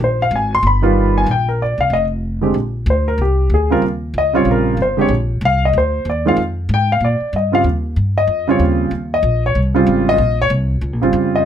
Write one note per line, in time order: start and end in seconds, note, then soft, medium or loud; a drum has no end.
0.00 0.29 A#1 medium
0.00 0.21 C5 medium
0.22 0.33 F5 medium
0.31 0.61 G#1 medium
0.36 0.52 G#5 medium
0.55 0.65 C6 loud
0.63 1.24 G1 medium
0.67 1.13 B5 medium
0.82 1.24 D#3 medium
0.82 1.25 G3 medium
0.82 1.25 B3 medium
0.82 1.25 F4 medium
1.18 1.28 G#5 medium
1.26 1.75 A#1 medium
1.31 1.48 G5 medium
1.49 1.60 A#4 medium
1.62 1.80 D5 medium
1.78 1.89 C2 medium
1.78 1.92 F5 medium
1.90 2.51 F1 medium
1.90 2.04 D#5 medium
2.41 2.53 D3 medium
2.41 2.54 G#3 medium
2.41 2.54 C4 medium
2.41 2.54 G4 medium
2.54 2.86 A#1 medium
2.86 3.17 D2 medium
2.90 3.08 C5 medium
3.08 3.19 A#4 medium
3.18 3.49 C2 medium
3.18 3.50 G4 medium
3.50 3.81 D2 medium
3.54 3.71 G#4 medium
3.70 3.82 C#3 medium
3.70 3.82 G3 medium
3.70 3.82 C4 medium
3.70 3.82 F4 medium
3.70 3.83 A#4 medium
3.82 4.13 D#2 medium
4.14 4.44 C#2 medium
4.18 4.35 D#5 medium
4.33 4.76 C#3 medium
4.33 4.76 G3 medium
4.33 4.76 C4 medium
4.33 4.77 F4 medium
4.33 4.47 C#5 medium
4.45 4.76 A#1 medium
4.51 4.79 A#4 medium
4.77 5.08 G1 medium
4.82 4.99 C5 medium
4.97 5.09 D3 medium
4.97 5.09 G#3 medium
4.97 5.09 C4 medium
4.97 5.10 G4 medium
5.01 5.12 C#5 medium
5.08 5.40 A#1 medium
5.41 5.73 C2 medium
5.45 5.63 F5 medium
5.65 5.76 D#5 medium
5.73 6.04 D2 medium
5.78 6.06 C5 medium
6.05 6.36 D#2 medium
6.10 6.27 D5 medium
6.25 6.37 D#3 medium
6.25 6.37 G#3 medium
6.25 6.37 C4 medium
6.25 6.37 F4 medium
6.25 6.39 F5 medium
6.36 6.68 F2 medium
6.69 7.00 G#2 medium
6.74 6.91 G5 medium
6.92 7.03 F5 medium
7.00 7.19 A#2 medium
7.05 7.33 D5 medium
7.20 muted upright bass stroke soft
7.33 7.63 G2 medium
7.33 7.54 D#5 medium
7.52 7.64 C#3 medium
7.52 7.64 G3 medium
7.52 7.64 C4 medium
7.52 7.64 F4 medium
7.52 7.62 F5 medium
7.64 7.95 D#2 medium
7.96 8.27 G2 medium
8.18 8.47 D#5 medium
8.27 8.59 F2 medium
8.48 8.90 C#3 medium
8.48 8.90 G3 medium
8.48 8.90 C4 medium
8.48 8.90 F4 medium
8.48 8.61 C#5 medium
8.59 8.90 D#2 medium
8.91 9.22 D#2 medium
9.14 9.42 D#5 medium
9.23 9.54 A#1 medium
9.46 9.57 C#5 medium
9.55 9.86 C2 medium
9.74 10.16 C#3 medium
9.74 10.17 G3 medium
9.74 10.17 C4 medium
9.74 10.17 F4 medium
9.86 10.18 G#1 medium
10.09 10.37 D#5 loud
10.18 10.49 A#1 medium
10.42 10.48 C#5 loud
10.50 10.81 C2 medium
10.81 10.92 C#2 medium
10.92 11.02 A#1 medium
11.01 11.12 G1 medium
11.01 11.43 C#3 medium
11.01 11.44 G3 medium
11.01 11.44 C4 medium
11.01 11.44 F4 medium
11.13 11.44 F2 medium
11.36 11.45 D#5 medium